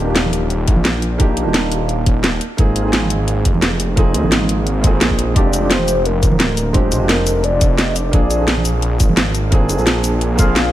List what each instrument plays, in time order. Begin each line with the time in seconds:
Already playing: detuned saw bass D#1, felt piano A#3 D4 D#4 F4 G4
0.04 felt piano A#3 D4 D#4
0.09 felt piano F4 G4
0.16 snare, closed hi-hat
0.25 high conga
0.33 closed hi-hat
0.50 closed hi-hat
0.68 detuned saw bass A#1, kick, closed hi-hat
0.76 high conga
0.85 snare, closed hi-hat
1.02 closed hi-hat
1.18 felt piano A#3 D4 D#4 F4 G4, kick, closed hi-hat
1.37 detuned saw bass A#1, closed hi-hat
1.43 detuned saw bass D#1, felt piano A#3 D4 D#4
1.47 felt piano F4 G4
1.54 snare, closed hi-hat
1.72 closed hi-hat
1.89 closed hi-hat
2.06 kick, closed hi-hat
2.24 snare, closed hi-hat
2.41 closed hi-hat
2.57 detuned saw bass G#1, felt piano A#3 C4 D#4 F4 G#4, kick, closed hi-hat
2.76 closed hi-hat
2.82 felt piano A#3 C4 D#4
2.86 felt piano F4 G#4
2.93 snare, closed hi-hat
3.02 high conga
3.10 closed hi-hat
3.28 closed hi-hat
3.45 detuned saw bass F1, kick, closed hi-hat
3.54 high conga
3.62 snare, closed hi-hat
3.80 closed hi-hat
3.96 felt piano A#3 C4 D#4 F4 G#4, kick, closed hi-hat
4.14 detuned saw bass D#2, closed hi-hat
4.21 detuned saw bass G#1, felt piano A#3 C4 D#4, high conga
4.25 felt piano F4 G#4
4.32 snare, closed hi-hat
4.41 high conga
4.49 closed hi-hat
4.67 closed hi-hat
4.81 felt piano A#3 C4 D#4, kick, closed hi-hat
4.85 felt piano F4 G#4
5.01 detuned saw bass A#1, snare, closed hi-hat
5.10 kick
5.19 closed hi-hat
5.35 detuned saw bass F1, felt piano G#3 C4 D4 F4 G4, soft synth lead D5, kick, closed hi-hat
5.53 closed hi-hat, shaker
5.60 felt piano G#3 C4 D4
5.64 felt piano F4 G4
5.71 soft synth lead C5, snare, closed hi-hat
5.79 high conga
5.88 closed hi-hat, shaker
6.05 soft synth lead A#4, closed hi-hat
6.23 detuned saw bass D1, kick, closed hi-hat, shaker
6.32 high conga
6.40 snare, closed hi-hat
6.57 closed hi-hat, shaker
6.73 felt piano G#3 C4 D4 F4 G4, soft synth lead C5, kick, closed hi-hat
6.92 detuned saw bass C2, closed hi-hat, shaker
6.98 detuned saw bass F1, felt piano G#3 C4 D4
7.03 felt piano F4 G4
7.09 soft synth lead A#4, snare, closed hi-hat
7.27 closed hi-hat, shaker
7.44 soft synth lead D5, closed hi-hat
7.61 kick, closed hi-hat, shaker
7.78 soft synth lead D#5, snare, closed hi-hat
7.96 soft synth lead D5, closed hi-hat, shaker
8.11 detuned saw bass A#1, felt piano A#3 C4 D4 F4 G#4, kick, closed hi-hat
8.31 closed hi-hat, shaker
8.37 felt piano A#3 C4 D4 F4
8.42 felt piano G#4
8.48 snare, closed hi-hat
8.57 high conga
8.65 closed hi-hat, shaker
8.82 closed hi-hat
9.00 detuned saw bass G#1, kick, closed hi-hat, shaker
9.09 high conga
9.17 snare, closed hi-hat
9.35 closed hi-hat, shaker
9.51 felt piano A#3 C4 D4 F4 G#4, kick, closed hi-hat
9.69 detuned saw bass F1, closed hi-hat, shaker
9.75 detuned saw bass A#1, felt piano A#3 C4 D4, shaker
9.79 felt piano F4 G#4
9.87 snare, closed hi-hat
10.04 closed hi-hat, shaker
10.21 closed hi-hat
10.36 felt piano A#3 C4 D4, soft synth lead F5, kick, closed hi-hat, shaker
10.40 felt piano F4 G#4
10.56 snare, closed hi-hat